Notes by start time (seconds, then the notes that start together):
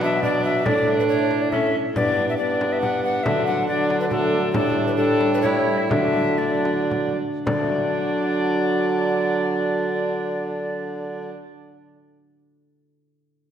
Already playing: B2 F#3 B3 D4
0.01 E5, frame drum
0.23 F#3 D4 D5, frame drum
0.44 E5
0.62 A2 A3 D4 E4 D5
0.66 A2 D4, frame drum
1.00 B4
1.09 C#5
1.31 frame drum
1.42 D5
1.49 A3 C#4 E4 E5, frame drum
1.93 G2 B3 D4 G4 D5, frame drum
1.97 G2 D4
2.29 E5
2.37 B3 D4 D5
2.61 frame drum
2.72 E5
2.81 F#5, frame drum
3.04 F#5
3.23 D3 F#3 A3 D4 F#4 E5, frame drum
3.46 F#5
3.68 F#3 D4 D5
3.90 frame drum
4.00 B4
4.09 F#3 A3 D4 F#4 A4, frame drum
4.51 A2 A3 D4 G4 A4, frame drum
4.56 G3 D4
4.87 B4
4.97 G3 D4 A4
5.21 frame drum
5.34 B4
5.40 A3 E4 G4 C#5
5.44 G3 E4, frame drum
5.78 E5
5.87 D3 A3 D4 F#4 E5, frame drum
5.91 D3 F#3
6.36 A3 D4 F#4 D5
6.40 F#3 D4
6.65 frame drum
6.91 frame drum
7.45 D3 F#3 D4 D5, frame drum
7.53 A3
7.60 D4
7.67 F#4
7.74 D5